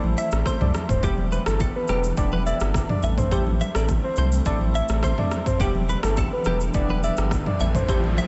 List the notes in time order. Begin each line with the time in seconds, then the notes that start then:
Already playing: E3 A3 C4 E4 A4
0.04 A1, high conga
0.18 E5, shaker
0.32 A1 A3 C4 E4 A4, cross-stick, shaker
0.46 C5, kick, cross-stick, low conga, shaker
0.61 C2 A3 C4 E4 A4 D5, mid tom, high conga
0.74 cross-stick, high conga, shaker
0.89 D1 C5, kick, mid tom, shaker
1.03 E1 G3 B3 D4 E4 G4, kick, shaker
1.18 high conga
1.32 B4, high conga, shaker
1.46 G1 B3 D4 E4 G4 A4, cross-stick, shaker
1.60 A4, kick, low conga, shaker
1.76 B4
1.88 E1 B3 D4 E4 G4 B4, cross-stick, high conga, shaker
2.04 shaker
2.17 E1 B3 D4 E4 G4 D5, kick, shaker
2.32 B4, high conga
2.46 D5 E5, shaker
2.60 G1 B3 D4 E4 G4, cross-stick, shaker
2.74 kick, cross-stick, low conga, shaker
2.89 D5, mid tom, high conga
3.03 A1 E3 A3 C4 E4 A4 E5, high conga, shaker
3.18 C5, kick, mid tom, shaker
3.31 A3 C4 E4 G4 A4 C5, kick, shaker
3.47 high conga
3.61 E5, high conga, shaker
3.75 A1 A3 C4 E4 A4 D5, cross-stick, shaker
3.88 kick, low conga, shaker
4.04 C5
4.16 C2 A3 C4 E4 A4 C5, high conga, shaker
4.32 shaker
4.46 A1 A3 C4 E4 A4 D5, kick, shaker
4.61 high conga
4.75 E5, shaker
4.89 A1 A3 C4 E4 A4, cross-stick, shaker
5.03 C5, kick, cross-stick, low conga, shaker
5.18 A3 C4 E4 A4 D5, mid tom, high conga
5.31 cross-stick, high conga, shaker
5.46 C5, kick, mid tom, shaker
5.60 E1 G3 B3 D4 E4 G4, kick, riser, shaker
5.75 high conga
5.89 B4, high conga, shaker
6.03 G1 B3 D4 E4 G4 A4, cross-stick, shaker
6.17 A4, kick, low conga, shaker
6.33 B4
6.45 E1 B3 D4 E4 G4 B4, cross-stick, high conga, shaker
6.61 shaker
6.74 E1 B3 D4 E4 G4 D5, kick, shaker
6.89 B4, high conga
7.03 D5 E5, shaker
7.17 G1 B3 D4 E4 G4, cross-stick, shaker
7.31 kick, cross-stick, low conga, shaker
7.46 D5, mid tom, high conga
7.59 A1 A3 C4 E4 A4 E5, high conga, shaker
7.75 C5, kick, mid tom, shaker
7.88 A3 C4 E4 G4 A4 C5, kick, shaker
8.04 high conga
8.18 E5, high conga, shaker